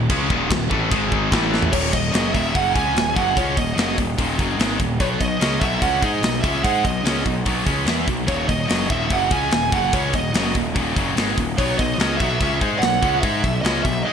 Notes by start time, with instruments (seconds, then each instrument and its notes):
0.10 picked electric bass C#2, distorted electric guitar C#3 G#3 C#4, kick, crash
0.30 picked electric bass D#1, distorted electric guitar D#2 A#2 D#3, kick
0.50 picked electric bass D#1, distorted electric guitar D#2 A#2, kick, snare, crash
0.70 picked electric bass A1, distorted electric guitar A2 E3 A3, kick
0.90 picked electric bass G#1, distorted electric guitar G#2 D#3 G#3, kick, crash
1.12 kick
1.32 picked electric bass A1, distorted electric guitar A2 E3 A3, kick, snare, crash
1.54 snare
1.62 floor tom
1.71 picked electric bass D#1, distorted electric guitar D#2 A#2 D#3, lead electric guitar C#5, kick, crash
1.92 picked electric bass D#1, distorted electric guitar D#2 A#2, lead electric guitar D#5, kick, open hi-hat
2.12 picked electric bass F#1, distorted electric guitar F#2 C#3 F#3, snare, open hi-hat
2.33 picked electric bass D#1, distorted electric guitar D#2 A#2 D#3, lead electric guitar E5, kick, open hi-hat
2.53 picked electric bass F#1, distorted electric guitar F#2 C#3 F#3, lead electric guitar F#5, kick, open hi-hat
2.74 picked electric bass C#2, distorted electric guitar C#3 G#3 C#4, lead electric guitar G#5, kick, open hi-hat
2.95 picked electric bass D#1, distorted electric guitar D#2 A#2, snare, open hi-hat
3.15 picked electric bass F#1, distorted electric guitar F#2 C#3 F#3, lead electric guitar F#5, kick, open hi-hat
3.36 picked electric bass C#2, distorted electric guitar C#3 G#3 C#4, lead electric guitar C#5, kick, open hi-hat
3.57 picked electric bass D#1, distorted electric guitar D#2 A#2, lead electric guitar D#5, kick, open hi-hat
3.76 picked electric bass F#1, distorted electric guitar F#2 C#3 F#3, snare, open hi-hat
3.97 picked electric bass D#1, distorted electric guitar D#2 A#2, kick, open hi-hat
4.18 picked electric bass D#1, distorted electric guitar D#2 A#2 D#3, kick, open hi-hat
4.38 picked electric bass F#1, distorted electric guitar F#2 C#3 F#3, kick, open hi-hat
4.58 picked electric bass G#1, distorted electric guitar G#2 D#3 G#3, snare, open hi-hat
4.79 picked electric bass D#1, distorted electric guitar D#2 A#2, kick, open hi-hat
5.00 picked electric bass B1, distorted electric guitar B2 F#3 B3, lead electric guitar C#5, kick, open hi-hat
5.19 picked electric bass B1, distorted electric guitar B2 F#3, lead electric guitar D#5, kick, open hi-hat
5.40 picked electric bass C#2, distorted electric guitar C#3 G#3 C#4, snare, open hi-hat
5.60 picked electric bass B1, distorted electric guitar B2 F#3 B3, lead electric guitar E5, kick, open hi-hat
5.81 picked electric bass C#2, distorted electric guitar C#3 G#3 C#4, lead electric guitar F#5, kick, open hi-hat
6.01 picked electric bass G#2, distorted electric guitar G#3 D#4 G#4, lead electric guitar D#5, kick, open hi-hat
6.22 picked electric bass B1, distorted electric guitar B2 F#3, snare, open hi-hat
6.42 picked electric bass C#2, distorted electric guitar C#3 G#3 C#4, lead electric guitar E5, kick, open hi-hat
6.64 picked electric bass G#2, distorted electric guitar G#3 D#4 G#4, lead electric guitar F#5, kick, open hi-hat
6.84 picked electric bass B1, distorted electric guitar B2 F#3, lead electric guitar D#5, kick, open hi-hat
7.03 picked electric bass C#2, distorted electric guitar C#3 G#3 C#4, snare, open hi-hat
7.25 picked electric bass B1, distorted electric guitar B2 F#3, kick, open hi-hat
7.46 picked electric bass B1, distorted electric guitar B2 F#3 B3, kick, open hi-hat
7.66 picked electric bass C#2, distorted electric guitar C#3 G#3 C#4, kick, open hi-hat
7.85 picked electric bass E2, distorted electric guitar E3 B3 E4, snare, open hi-hat
8.07 picked electric bass B1, distorted electric guitar B2 F#3, kick, open hi-hat
8.27 picked electric bass D#1, distorted electric guitar D#2 A#2 D#3, lead electric guitar C#5, kick, open hi-hat
8.48 picked electric bass D#1, distorted electric guitar D#2 A#2, lead electric guitar D#5, kick, open hi-hat
8.68 picked electric bass F#1, distorted electric guitar F#2 C#3 F#3, snare, open hi-hat
8.89 picked electric bass D#1, distorted electric guitar D#2 A#2 D#3, lead electric guitar E5, kick, open hi-hat
9.10 picked electric bass F#1, distorted electric guitar F#2 C#3 F#3, lead electric guitar F#5, kick, open hi-hat
9.31 picked electric bass C#2, distorted electric guitar C#3 G#3 C#4, lead electric guitar G#5, kick, open hi-hat
9.51 picked electric bass D#1, distorted electric guitar D#2 A#2, snare, open hi-hat
9.72 picked electric bass F#1, distorted electric guitar F#2 C#3 F#3, lead electric guitar F#5, kick, open hi-hat
9.93 picked electric bass C#2, distorted electric guitar C#3 G#3 C#4, lead electric guitar C#5, kick, open hi-hat
10.13 picked electric bass D#1, distorted electric guitar D#2 A#2, lead electric guitar D#5, kick, open hi-hat
10.34 picked electric bass F#1, distorted electric guitar F#2 C#3 F#3, snare, open hi-hat
10.55 picked electric bass D#1, distorted electric guitar D#2 A#2, kick, open hi-hat
10.75 picked electric bass D#1, distorted electric guitar D#2 A#2 D#3, kick, open hi-hat
10.96 picked electric bass F#1, distorted electric guitar F#2 C#3 F#3, kick, open hi-hat
11.16 picked electric bass G#1, distorted electric guitar G#2 D#3 G#3, snare, open hi-hat
11.37 picked electric bass D#1, distorted electric guitar D#2 A#2, kick, open hi-hat
11.57 picked electric bass B1, distorted electric guitar B2 F#3 B3, lead electric guitar C#5, kick, open hi-hat
11.78 picked electric bass B1, distorted electric guitar B2 F#3, lead electric guitar D#5, kick, open hi-hat
11.98 picked electric bass C#2, distorted electric guitar C#3 G#3 C#4, snare, open hi-hat
12.17 picked electric bass B1, distorted electric guitar B2 F#3, lead electric guitar E5, kick, open hi-hat
12.21 distorted electric guitar B3
12.40 picked electric bass C#2, distorted electric guitar C#3 G#3 C#4, kick, open hi-hat
12.61 picked electric bass G#2, distorted electric guitar G#3 D#4 G#4, kick, open hi-hat
12.79 picked electric bass B1, distorted electric guitar B2 F#3, lead electric guitar F#5, open hi-hat
12.83 snare
13.02 picked electric bass C#2, distorted electric guitar C#3 G#3 C#4, kick, open hi-hat
13.20 picked electric bass G#2, distorted electric guitar G#3 D#4 G#4, lead electric guitar E5, kick, open hi-hat
13.44 picked electric bass B1, distorted electric guitar B2 F#3, kick, open hi-hat
13.61 picked electric bass C#2, distorted electric guitar C#3 G#3 C#4, lead electric guitar D#5, open hi-hat
13.66 snare
13.83 picked electric bass B1, distorted electric guitar B2 F#3, lead electric guitar E5, kick, open hi-hat
14.03 distorted electric guitar G#2 D#3 G#3, lead electric guitar D#5